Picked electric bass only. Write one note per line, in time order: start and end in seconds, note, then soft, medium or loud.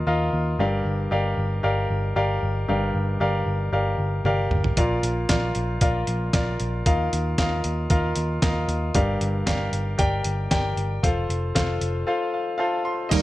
0.07 0.29 D#2 medium
0.33 0.55 D#2 medium
0.59 0.81 G1 medium
0.85 1.07 G1 medium
1.12 1.33 G1 medium
1.38 1.59 G1 medium
1.64 1.86 G1 medium
1.90 2.12 G1 medium
2.16 2.38 G1 medium
2.43 2.64 G1 medium
2.69 2.90 G1 medium
2.95 3.16 G1 medium
3.21 3.42 G1 medium
3.46 3.68 G1 medium
3.73 3.94 G1 medium
3.98 4.20 G1 medium
4.25 4.46 G1 medium
4.51 4.72 G1 medium
4.78 4.99 A#1 medium
5.03 5.25 A#1 medium
5.29 5.51 A#1 medium
5.56 5.77 A#1 medium
5.81 6.03 A#1 medium
6.08 6.29 A#1 medium
6.34 6.55 A#1 medium
6.60 6.82 A#1 medium
6.86 7.08 D#2 medium
7.13 7.34 D#2 medium
7.38 7.60 D#2 medium
7.65 7.86 D#2 medium
7.90 8.12 D#2 medium
8.17 8.38 D#2 medium
8.43 8.64 D#2 medium
8.68 8.90 D#2 medium
8.95 9.16 G1 medium
9.21 9.42 G1 medium
9.47 9.68 G1 medium
9.73 9.94 G1 medium
9.99 10.20 G1 medium
10.25 10.47 G1 medium
10.51 10.73 G1 medium
10.77 10.98 G1 medium
11.03 11.25 F1 medium
11.30 11.51 F1 medium
11.56 11.77 F1 medium
11.81 12.03 F1 medium
13.12 13.22 D#2 medium